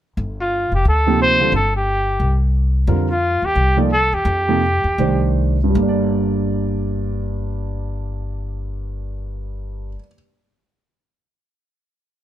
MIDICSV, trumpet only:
0, 0, Header, 1, 2, 480
1, 0, Start_track
1, 0, Key_signature, -2, "minor"
1, 0, Tempo, 338028
1, 249, Time_signature, 4, 2, 24, 8
1, 5049, Tempo, 356930
1, 6969, Tempo, 396825
1, 15744, End_track
2, 0, Start_track
2, 0, Title_t, "Trumpet"
2, 0, Program_c, 0, 56
2, 574, Note_on_c, 0, 65, 68
2, 1007, Note_off_c, 0, 65, 0
2, 1059, Note_on_c, 0, 67, 72
2, 1211, Note_off_c, 0, 67, 0
2, 1252, Note_on_c, 0, 69, 74
2, 1676, Note_off_c, 0, 69, 0
2, 1727, Note_on_c, 0, 72, 99
2, 2153, Note_off_c, 0, 72, 0
2, 2206, Note_on_c, 0, 69, 79
2, 2464, Note_off_c, 0, 69, 0
2, 2505, Note_on_c, 0, 67, 70
2, 3386, Note_off_c, 0, 67, 0
2, 4412, Note_on_c, 0, 65, 80
2, 4904, Note_on_c, 0, 67, 94
2, 4925, Note_off_c, 0, 65, 0
2, 5356, Note_off_c, 0, 67, 0
2, 5548, Note_on_c, 0, 69, 92
2, 5836, Note_on_c, 0, 67, 83
2, 5856, Note_off_c, 0, 69, 0
2, 7440, Note_off_c, 0, 67, 0
2, 15744, End_track
0, 0, End_of_file